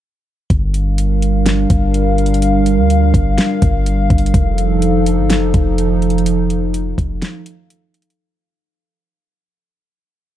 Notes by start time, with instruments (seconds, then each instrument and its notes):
0.50 808-style bass G1, analog synth pad G3 D4 A#4 F5, kick, closed hi-hat
0.74 closed hi-hat
0.98 closed hi-hat
1.22 closed hi-hat
1.46 snare, closed hi-hat
1.70 808-style bass G1, kick, closed hi-hat
1.94 closed hi-hat
2.18 closed hi-hat
2.26 closed hi-hat
2.34 closed hi-hat
2.42 closed hi-hat
2.66 closed hi-hat
2.78 808-style bass D2
2.90 closed hi-hat
3.14 808-style bass G1, kick, closed hi-hat
3.38 snare, closed hi-hat
3.62 808-style bass G1, kick, closed hi-hat
3.86 closed hi-hat
4.10 808-style bass G1, kick, closed hi-hat
4.18 closed hi-hat
4.26 closed hi-hat
4.34 808-style bass F1, analog synth pad F3 D#4 A4, kick, closed hi-hat
4.58 closed hi-hat
4.82 closed hi-hat
5.06 closed hi-hat
5.18 808-style bass G1
5.30 snare, closed hi-hat
5.36 808-style bass F1
5.54 808-style bass F1, kick, closed hi-hat
5.78 closed hi-hat
6.02 closed hi-hat
6.10 closed hi-hat
6.18 closed hi-hat
6.26 closed hi-hat
6.50 closed hi-hat
6.74 closed hi-hat
6.98 808-style bass F1, kick, closed hi-hat
7.22 snare, closed hi-hat
7.46 closed hi-hat
7.70 closed hi-hat
7.94 closed hi-hat
8.02 closed hi-hat
8.10 closed hi-hat